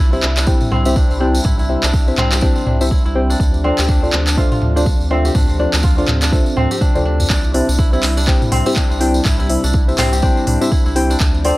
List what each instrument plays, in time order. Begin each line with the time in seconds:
Already playing: analog synth bass C2, analog synth pad C3 G3 E4, kora C4 D4 G4
0.00 kora E4
0.13 synth stab C4 E4 G4 C5 E5, kora E4, tambourine
0.23 analog synth bass C2, clap
0.37 kora D4, clap, tambourine
0.46 synth stab C4 E4 G4 C5 G5, kick, tambourine
0.61 mid tom, tambourine
0.72 analog synth bass C2, kora C4, mid tom
0.85 synth stab C4 E4 G4 C5 E5, kora G4, tambourine
0.96 kora D4, kick, tambourine
1.10 analog synth bass C2, tambourine
1.20 synth stab C4 E4 G4 C5 G5, kora D4
1.35 tambourine
1.44 analog synth bass C2, kora E4, kick, mid tom, tambourine
1.59 kora E4, tambourine
1.69 synth stab C4 E4 G4 C5 E5
1.83 analog synth bass C2, kora D4, clap, tambourine
1.93 kick, tambourine
2.08 synth stab C4 E4 G4 C5 E5, tambourine
2.18 analog synth bass C2, kora C4, clap, mid tom
2.32 kora G4, clap, tambourine
2.41 synth stab C4 E4 G4 C5 G5, kora D4, kick, tambourine
2.56 tambourine
2.66 analog synth bass C2, kora D4, mid tom
2.81 synth stab C4 E4 G4 C5 E5, tambourine
2.91 kora E4, kick, tambourine
3.05 analog synth bass C2, kora E4, tambourine
3.15 synth stab C4 E4 G4 C5 G5
3.30 kora D4, tambourine
3.40 analog synth bass D2, analog synth pad C3 F3 D4, kick, tambourine
3.54 tambourine
3.64 kora C4, synth stab D4 F4 A4 C5 D5
3.78 analog synth bass D2, kora G4, clap, tambourine
3.88 kora D4, kick, tambourine
4.03 synth stab D4 F4 A4 C5 D5, tambourine
4.13 analog synth bass D2, kora D4, clap
4.27 clap, tambourine
4.37 synth stab D4 F4 A4 C5 E5, kora F4, kick, tambourine
4.52 kora F4, mid tom, tambourine
4.62 analog synth bass D2, mid tom
4.76 kora D4, synth stab D4 F4 A4 C5 D5, tambourine
4.86 kick, tambourine
5.01 analog synth bass D2, tambourine
5.11 kora C4, synth stab D4 F4 A4 C5 E5
5.25 kora G4, tambourine
5.35 analog synth bass D2, analog synth pad C4, kora D4, kick, mid tom, tambourine
5.49 tambourine
5.59 synth stab D4 F4 A4 C5 D5, kora D4
5.74 analog synth bass D2, clap, tambourine
5.83 kora F4, kick, tambourine
5.98 synth stab D4 F4 A4 C5 D5, kora F4, tambourine
6.08 analog synth bass D2, clap, mid tom
6.21 kora D4, clap, tambourine
6.32 synth stab D4 F4 A4 C5 E5, kick, tambourine
6.46 tambourine
6.57 analog synth bass D2, kora C4, mid tom
6.71 kora G4, tambourine
6.81 kora D4, kick, high tom, tambourine
6.95 analog synth bass D2, synth stab D4 F4 A4 C5 D5, high tom, tambourine
7.05 kora D4
7.20 mid tom, tambourine
7.30 analog synth bass C2, analog synth pad C3 G3 E4, kora D4, kick, clap, tambourine
7.44 tambourine
7.54 synth stab C4 E4 G4 C5 E5, kora D4, open hi-hat
7.69 analog synth bass C2, tambourine
7.78 kora E4, kick, tambourine
7.93 synth stab C4 E4 G4 C5 E5, kora E4, tambourine
8.03 analog synth bass C2, clap, open hi-hat
8.17 kora D4, tambourine
8.27 synth stab C4 E4 G4 C5 G5, kick, clap, tambourine
8.42 mid tom, tambourine
8.52 analog synth bass C2, kora C4, open hi-hat, mid tom
8.66 synth stab C4 E4 G4 C5 E5, kora G4, tambourine
8.76 kora D4, kick, clap, tambourine
8.91 analog synth bass C2, tambourine
9.00 synth stab C4 E4 G4 C5 G5, kora D4, open hi-hat
9.14 tambourine
9.25 analog synth bass C2, kora E4, kick, clap, mid tom, tambourine
9.39 kora E4, tambourine
9.49 synth stab C4 E4 G4 C5 E5, open hi-hat
9.64 analog synth bass C2, kora D4, tambourine
9.73 kick, tambourine
9.88 synth stab C4 E4 G4 C5 E5, tambourine
9.98 analog synth bass C2, kora C4, clap, open hi-hat, mid tom
10.13 kora G4, tambourine
10.22 synth stab C4 E4 G4 C5 G5, kora D4, kick, tambourine
10.37 tambourine
10.47 analog synth bass C2, kora D4, open hi-hat, mid tom
10.61 synth stab C4 E4 G4 C5 E5, tambourine
10.71 kora E4, kick, tambourine
10.86 analog synth bass C2, kora E4, tambourine
10.96 synth stab C4 E4 G4 C5 G5, open hi-hat
11.10 kora D4, tambourine
11.20 analog synth bass D2, analog synth pad C3 F3 D4, kick, clap, tambourine
11.34 tambourine
11.45 kora C4, synth stab D4 F4 A4 C5 D5, open hi-hat